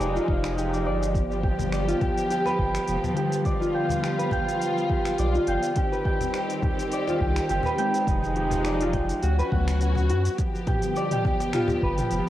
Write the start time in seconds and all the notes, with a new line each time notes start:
Already playing: F3 G#3 D#4 F4 G4 B4 G5
0.00 F1 D5, shaker
0.16 F4, shaker
0.28 F1 F5, kick
0.44 finger snap, shaker
0.57 G4, shaker
0.73 D5, shaker
0.85 G1 D5, cajon slap
1.03 shaker
1.15 B3 G4, kick, closed hi-hat, shaker
1.31 shaker
1.43 G4, kick
1.57 D3 G3 B3, cajon bass, closed hi-hat, shaker
1.72 D5, finger snap, shaker
1.88 F4, closed hi-hat, shaker
2.01 G5, kick, cajon bass, closed hi-hat
2.17 closed hi-hat, shaker
2.30 G4, closed hi-hat, shaker
2.45 B4, cajon slap, shaker
2.58 G1 G5, kick
2.75 finger snap, closed hi-hat, shaker
2.88 F1, closed hi-hat, shaker
3.04 cajon bass, shaker
3.14 D3 G3 G4, closed hi-hat
3.18 B3
3.32 closed hi-hat, shaker
3.45 F4 D5, kick, closed hi-hat, shaker
3.61 F4, cajon slap, shaker
3.75 G5
3.87 D3 G3 B3, cajon bass, closed hi-hat, shaker
4.03 G4, finger snap, shaker
4.19 B4, closed hi-hat, shaker
4.31 G5, cajon bass, kick, closed hi-hat
4.49 closed hi-hat, shaker
4.62 closed hi-hat, shaker
4.78 shaker
4.90 G4, kick
5.05 finger snap, closed hi-hat, shaker
5.18 B1 D5, closed hi-hat, shaker
5.35 F4, shaker
5.47 G1 G5, cajon slap, closed hi-hat
5.63 closed hi-hat, shaker
5.76 D#3 C4 G4, kick, closed hi-hat, shaker
5.92 B4, shaker
6.05 G5, kick
6.19 D#3 G3, cajon bass, closed hi-hat, shaker
6.23 C4
6.34 finger snap, shaker
6.50 closed hi-hat, shaker
6.62 G4, cajon bass, kick, closed hi-hat
6.79 closed hi-hat, shaker
6.92 D5, closed hi-hat, shaker
7.07 F4, cajon slap, shaker
7.21 C2 G5, kick
7.36 finger snap, closed hi-hat, shaker
7.49 G1 G4, closed hi-hat, shaker
7.63 B4, cajon bass, shaker
7.76 D#3 G#3 G5, closed hi-hat
7.80 C4
7.94 closed hi-hat, shaker
8.07 F1 F3 G#3 D#4, kick, closed hi-hat, shaker
8.23 cajon slap, shaker
8.36 G4, closed hi-hat
8.51 cajon bass, cajon slap, closed hi-hat, shaker
8.65 D5, finger snap, shaker
8.80 F4, closed hi-hat, shaker
8.93 G5, cajon bass, kick, closed hi-hat
9.09 closed hi-hat, shaker
9.22 D2 C#4 F#4, closed hi-hat, shaker
9.39 B4, shaker
9.51 D2 C#3 F#3 B3 F#5, kick
9.67 finger snap, closed hi-hat, shaker
9.80 closed hi-hat, shaker
9.95 cajon bass, shaker
10.09 F#2 F#4, cajon slap, closed hi-hat
10.25 closed hi-hat, shaker
10.38 F3 B3 G4, kick, cajon slap, closed hi-hat, shaker
10.55 shaker
10.67 G4, kick, cajon slap, closed hi-hat, mid tom
10.81 D3 G3, closed hi-hat, shaker
10.85 B3
10.96 D5, shaker
11.11 G5, closed hi-hat, mid tom, shaker
11.25 G4, kick, cajon bass
11.40 cajon slap, closed hi-hat, shaker
11.53 F4, finger snap, closed hi-hat, mid tom, shaker
11.68 cajon bass, shaker
11.82 G1 B4, kick
11.98 G4, closed hi-hat, mid tom, shaker
12.11 F1, closed hi-hat, shaker